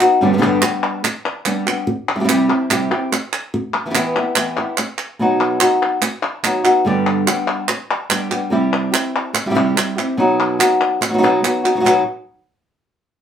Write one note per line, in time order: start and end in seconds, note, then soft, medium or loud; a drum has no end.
0.00 0.21 B3 soft
0.00 0.21 D#4 soft
0.00 0.20 F#4 medium
0.00 clap medium
0.21 0.41 G2 medium
0.21 0.32 D3 medium
0.21 0.33 G3 loud
0.21 0.33 B3 medium
0.21 0.33 D4 medium
0.21 0.33 G4 medium
0.33 0.37 D3 medium
0.33 0.37 G3 medium
0.33 0.38 B3 medium
0.33 0.38 D4 medium
0.33 0.38 G4 medium
0.38 0.41 D3 medium
0.38 0.42 G3 medium
0.38 0.42 B3 medium
0.38 0.42 D4 medium
0.38 0.42 G4 medium
0.42 0.62 G2 loud
0.42 0.62 D3 medium
0.42 0.63 G3 medium
0.42 0.62 B3 loud
0.42 0.62 D4 loud
0.42 0.61 G4 loud
0.62 1.03 G3 soft
0.62 1.03 B3 medium
0.62 1.04 D4 medium
0.62 1.03 G4 medium
0.62 clap loud
1.04 muted nylon-string guitar stroke medium
1.04 clap medium
1.26 clap medium
1.45 1.65 G3 medium
1.45 1.66 B3 medium
1.45 1.66 D4 medium
1.45 1.65 G4 medium
1.45 clap medium
1.66 1.87 G3 medium
1.66 1.87 B3 soft
1.66 1.87 D4 medium
1.66 1.86 G4 medium
1.66 clap medium
1.87 muted nylon-string guitar stroke medium
2.15 2.19 G3 medium
2.15 2.19 C4 medium
2.15 2.19 E4 medium
2.15 2.20 G4 medium
2.20 2.23 G3 medium
2.20 2.23 C4 medium
2.20 2.24 E4 medium
2.20 2.24 G4 medium
2.24 2.28 G3 medium
2.24 2.28 C4 medium
2.24 2.28 E4 medium
2.24 2.28 G4 medium
2.29 2.49 C3 medium
2.29 2.49 G3 medium
2.29 2.49 C4 medium
2.29 2.49 E4 medium
2.29 2.47 G4 medium
2.29 clap loud
2.49 2.70 C4 medium
2.49 2.70 E4 medium
2.49 2.69 G4 medium
2.70 2.90 C3 medium
2.70 2.90 G3 medium
2.70 2.91 C4 medium
2.70 2.91 E4 medium
2.70 2.90 G4 medium
2.70 clap medium
2.91 3.12 C4 medium
2.91 3.11 E4 soft
2.91 3.11 G4 medium
3.12 muted nylon-string guitar stroke medium
3.12 clap medium
3.33 clap medium
3.54 muted nylon-string guitar stroke medium
3.86 3.89 E3 soft
3.86 3.90 B3 medium
3.86 3.90 E4 medium
3.86 3.90 G4 medium
3.90 3.94 E3 medium
3.90 3.94 B3 medium
3.90 3.94 E4 medium
3.90 3.95 G4 medium
3.95 4.14 E3 medium
3.95 4.14 B3 medium
3.95 4.15 E4 loud
3.95 4.15 G4 medium
3.95 clap loud
4.16 4.35 B3 soft
4.16 4.36 E4 medium
4.16 4.35 G4 medium
4.35 4.55 E3 medium
4.35 4.56 B3 medium
4.35 4.56 E4 medium
4.35 4.56 G4 medium
4.35 clap loud
4.57 4.77 B3 medium
4.57 4.77 E4 medium
4.57 4.77 G4 medium
4.77 muted nylon-string guitar stroke medium
4.77 clap medium
4.98 clap medium
5.19 5.60 B2 medium
5.19 5.60 F#3 medium
5.19 5.60 B3 medium
5.19 5.61 D#4 medium
5.19 5.60 F#4 loud
5.60 6.01 B3 soft
5.60 6.01 D#4 soft
5.60 6.01 F#4 medium
5.60 clap medium
6.01 muted nylon-string guitar stroke medium
6.01 clap medium
6.43 6.63 F#3 medium
6.43 6.64 B3 medium
6.43 6.64 D#4 medium
6.43 6.62 F#4 medium
6.43 clap medium
6.64 6.85 B3 soft
6.64 6.85 D#4 soft
6.64 6.84 F#4 medium
6.64 clap medium
6.85 7.26 G2 medium
6.85 7.26 D3 medium
6.85 7.26 G3 medium
6.85 7.27 B3 medium
6.85 7.27 D4 medium
6.85 7.26 G4 loud
7.27 7.68 G3 soft
7.27 7.68 B3 medium
7.27 7.68 D4 medium
7.27 7.68 G4 medium
7.27 clap loud
7.68 muted nylon-string guitar stroke medium
7.68 clap medium
7.91 clap medium
8.10 8.30 G3 medium
8.10 8.30 B3 medium
8.10 8.30 D4 medium
8.10 8.29 G4 medium
8.10 clap medium
8.31 8.50 G3 soft
8.31 8.51 B3 soft
8.31 8.51 D4 medium
8.31 8.51 G4 medium
8.31 clap medium
8.50 8.92 C3 medium
8.50 8.92 G3 medium
8.50 8.92 C4 medium
8.50 8.92 E4 loud
8.50 8.91 G4 loud
8.92 9.33 C4 soft
8.92 9.34 E4 medium
8.92 9.33 G4 medium
8.92 clap loud
9.33 muted nylon-string guitar stroke medium
9.33 clap medium
9.46 9.49 G3 medium
9.46 9.54 G3 medium
9.46 9.50 C4 medium
9.46 9.50 E4 medium
9.46 9.51 G4 medium
9.51 9.75 C3 medium
9.51 9.54 C4 medium
9.51 9.54 E4 medium
9.51 9.55 G4 medium
9.55 9.74 G3 medium
9.55 9.76 C4 medium
9.55 9.76 E4 loud
9.55 9.76 G4 medium
9.76 9.96 G3 medium
9.76 9.97 C4 medium
9.76 9.97 E4 medium
9.76 9.95 G4 medium
9.76 clap medium
9.96 10.18 C4 soft
9.96 10.18 E4 soft
9.96 10.17 G4 medium
9.96 clap medium
10.17 10.59 B2 medium
10.17 10.59 F#3 loud
10.17 10.59 B3 medium
10.17 10.59 D#4 loud
10.17 10.58 F#4 loud
10.59 11.00 B3 soft
10.59 11.00 D#4 medium
10.59 11.00 F#4 medium
10.59 clap loud
10.81 clap medium
11.01 muted nylon-string guitar stroke medium
11.01 clap medium
11.09 11.12 F#3 medium
11.09 11.13 B3 medium
11.09 11.13 D#4 medium
11.09 11.13 F#4 medium
11.13 11.17 F#3 medium
11.13 11.17 B3 medium
11.13 11.17 D#4 medium
11.13 11.18 F#4 medium
11.18 11.42 B2 medium
11.18 11.22 F#3 medium
11.18 11.22 B3 medium
11.18 11.23 D#4 medium
11.18 11.22 F#4 medium
11.23 11.42 F#3 medium
11.23 11.43 B3 medium
11.23 11.43 D#4 loud
11.23 11.43 F#4 loud
11.43 11.63 F#3 medium
11.43 11.64 B3 medium
11.43 11.64 D#4 medium
11.43 11.62 F#4 medium
11.43 clap medium
11.64 11.75 B3 soft
11.64 11.75 D#4 soft
11.64 11.76 F#4 medium
11.64 clap medium
11.75 11.79 F#3 medium
11.75 11.79 B3 medium
11.75 11.80 D#4 medium
11.75 11.80 F#4 medium
11.80 11.84 F#3 medium
11.80 11.84 B3 medium
11.80 11.84 D#4 medium
11.80 11.85 F#4 medium
11.84 12.02 B2 medium
11.84 12.02 F#3 medium
11.84 12.02 B3 medium
11.84 12.02 D#4 loud
11.84 12.02 F#4 medium
11.84 clap medium